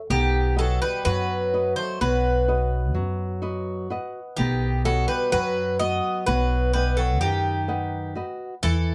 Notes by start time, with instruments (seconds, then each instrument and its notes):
0.10 upright bass B1, bouzouki D#3 G4, nylon-string guitar B3
0.56 bouzouki F#3 A4, nylon-string guitar F#4 B4 D#5
0.82 bouzouki G3 B4
1.05 upright bass F#2, nylon-string guitar F#3, bouzouki F#3 B4
1.53 nylon-string guitar F#4 B4 D#5
1.76 bouzouki A3 C5
2.01 upright bass B1, bouzouki F#3 B4, nylon-string guitar B3
2.48 nylon-string guitar F#4 B4 D#5
2.95 upright bass F#2, nylon-string guitar F#3
3.42 nylon-string guitar F#4 B4 D#5
3.90 nylon-string guitar B4 D#5 F#5
4.37 upright bass B1, bouzouki D#3 G4, nylon-string guitar B3
4.85 bouzouki F#3 A4, nylon-string guitar F#4 B4 D#5
5.08 bouzouki G3 B4
5.32 upright bass F#2, bouzouki F#3 B4, nylon-string guitar F#3
5.79 bouzouki B3 D#5, nylon-string guitar F#4 B4 D#5
6.26 upright bass B1, bouzouki F#3 B4, nylon-string guitar B3
6.73 bouzouki G3 B4, nylon-string guitar B4 D#5 F#5
6.97 bouzouki F#3 A4
7.21 upright bass F#2, bouzouki D#3 G4, nylon-string guitar D#3
7.68 nylon-string guitar B4 D#5 F#5
8.15 nylon-string guitar F#4 B4 D#5
8.63 upright bass E2, nylon-string guitar E3, bouzouki E3 A4